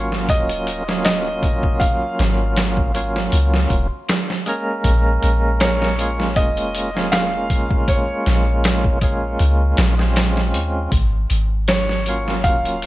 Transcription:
Already playing: G#1 F#3 A#3 C#4 F4 C#5
0.12 snare
0.29 D#1 D#5, kick, closed hi-hat
0.49 closed hi-hat
0.67 closed hi-hat
0.88 F#3 A#3 C#4 F4, snare
1.05 D#5, snare, closed hi-hat
1.43 kick, closed hi-hat
1.63 kick
1.80 F5, kick, closed hi-hat
2.19 G#1, snare, closed hi-hat
2.57 snare, closed hi-hat
2.77 kick
2.94 F#3 A#3 C#4 F4, closed hi-hat
3.16 snare
3.32 C#2, closed hi-hat
3.54 snare
3.70 D#1, kick, closed hi-hat
4.09 snare, closed hi-hat
4.30 snare
4.46 G#3 A#3 C#4 A#4, closed hi-hat
4.84 A#1, kick, closed hi-hat
5.23 A#1, closed hi-hat
5.60 C#5, snare, closed hi-hat
5.82 snare
5.98 G#3 A#3 C#4 F4, closed hi-hat
6.20 snare
6.36 F1 D#5, kick, closed hi-hat
6.57 closed hi-hat
6.75 closed hi-hat
6.94 G#3 A#3 C#4 F4, snare
7.12 F5, snare, closed hi-hat
7.50 kick, closed hi-hat
7.71 kick
7.88 C#5, kick, closed hi-hat
8.26 A#1, snare, closed hi-hat
8.64 snare, closed hi-hat
8.84 kick
9.01 G#3 A#3 C#4 F4, kick, closed hi-hat
9.39 C#2, closed hi-hat
9.77 A#1, snare, closed hi-hat
9.98 G#3 C4 C#4 F4, snare
10.16 snare, closed hi-hat
10.37 snare
10.54 D#2, closed hi-hat
10.92 G#1, kick, closed hi-hat
11.30 G#1, closed hi-hat
11.68 C#5, snare, closed hi-hat
11.89 snare
12.06 F#3 A#3 C#4 F4, closed hi-hat
12.28 snare
12.44 D#1 F5, kick, closed hi-hat
12.65 closed hi-hat
12.82 closed hi-hat

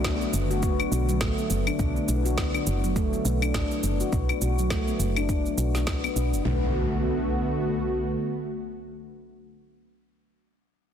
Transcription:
Already playing: B1 D3 A3 B3 F#4, downlifter
0.04 D4, kick, snare, cabasa
0.21 B3, cabasa
0.33 F#1 B3, cabasa
0.51 F#4, cabasa
0.63 B3, kick, cabasa
0.80 D4, cabasa, claves
0.92 B1 F#4, cabasa
1.09 F#3, cabasa
1.21 A1 A3, kick, snare, cabasa
1.38 B3, cabasa
1.50 F#1 A3, cabasa
1.67 D4, cabasa, claves
1.79 B1 D4 E4, kick, cabasa
1.96 B3, cabasa
2.08 B1 B3, cabasa
2.25 F#4, cabasa
2.37 B3, kick, snare, cabasa
2.54 D4, cabasa, claves
2.67 F#1 F#4, cabasa
2.84 F#3, cabasa
2.96 A3, kick, cabasa
3.13 B3, cabasa
3.25 B1 A3, cabasa
3.42 D4, cabasa, claves
3.54 A1 D4, kick, snare, cabasa
3.71 B3, cabasa
3.83 F#1 B3, cabasa
4.00 F#4, cabasa
4.12 B1 B3, kick, cabasa
4.29 D4, cabasa, claves
4.42 B1 F#4, cabasa
4.58 F#3, cabasa
4.70 A3, kick, snare, cabasa
4.88 B3, cabasa
5.00 F#1 A3, cabasa
5.17 D4, cabasa, claves
5.29 D4, kick, cabasa
5.46 B3, cabasa
5.58 B1 F#4, cabasa
5.75 B3, snare, cabasa
5.87 B3, kick, snare, cabasa
6.04 B3, cabasa, claves
6.16 B1 D4, cabasa
6.33 F#1 B3, cabasa
6.45 B1 D3 A3 B3 F#4, impact

